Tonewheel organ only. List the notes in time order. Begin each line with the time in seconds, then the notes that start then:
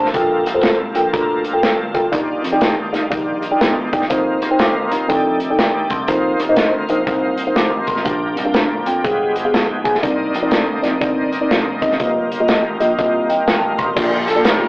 Already playing: D3 A#3 C4 A4
0.14 G3 F4
2.12 D#3 D4
4.11 A#3 C4 F4
5.11 A3 D4 G4
6.08 D#3 A#3 C4 F4
8.06 F3 D4 G4
9.06 G#3 B3
10.03 A#3 C4 D4 D#4
12.00 D#3 G3 F4
13.97 D3 G3 A#3 F4